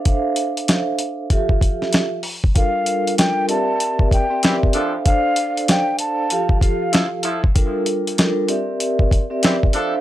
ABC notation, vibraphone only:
X:1
M:4/4
L:1/16
Q:"Swing 16ths" 1/4=96
K:F
V:1 name="Vibraphone"
[DAcef]6- [DAcef] z [F,FGAe]6 z2 | [G,DFAB]4 [G,DFAB]2 [CGBde]4- [CGBde] [CGBde]3 [DAcef]2 | [DAcdf]6- [DAcdf] z [F,FGAf]6 z2 | [G,DFAB]4 [G,DFAB]2 [CGBde]4- [CGBde] [CGBde]3 [DAcef]2 |]